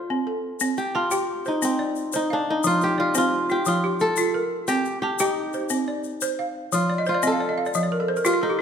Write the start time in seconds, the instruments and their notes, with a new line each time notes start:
Already playing: kora F4 C5, balafon C5
0.10 balafon C4
0.27 balafon A4
0.60 balafon C4, shaker
0.77 kora G4, shaker
0.95 kora F4, balafon A5
1.11 balafon G4 G5, shaker
1.45 kora D#4, balafon C5, shaker
1.62 balafon C4, kora C4, shaker
1.79 balafon D5
1.96 shaker
2.12 kora D#4, balafon C5, shaker
2.30 kora D4, balafon F5
2.50 kora D#4
2.63 balafon F3, kora F4, shaker
2.81 kora G4, shaker
2.98 kora F4, balafon D5
3.15 balafon C4 C5, kora F4, shaker
3.49 balafon F4, kora G4, shaker
3.65 balafon F3, kora F4, shaker
3.84 balafon G4
4.00 kora A4, shaker
4.16 balafon F4, shaker
4.34 balafon A#4
4.68 balafon C4, kora G4, shaker
4.85 shaker
5.02 kora G4, balafon A5
5.19 kora D#4, balafon G4 G5, shaker
5.53 balafon C5, shaker
5.69 balafon C4, shaker
5.88 balafon D5
6.04 shaker
6.21 balafon C5, shaker
6.39 balafon F5
6.72 balafon F3, kora F4, shaker
6.89 balafon D5
6.98 balafon D#5
7.06 kora F4, balafon C5, shaker
7.14 balafon D5
7.23 balafon C4 D#5, shaker
7.27 kora A4
7.32 balafon F5
7.40 balafon D5
7.49 balafon D#5
7.58 balafon F5
7.66 balafon D5, shaker
7.74 balafon F3 D#5, shaker
7.83 balafon D5
7.92 balafon A#4
8.00 balafon A4
8.08 balafon C5
8.16 balafon A#4, shaker
8.25 balafon F4 G4, kora F4, shaker
8.33 balafon F4
8.42 kora D#4, balafon A4
8.50 balafon G4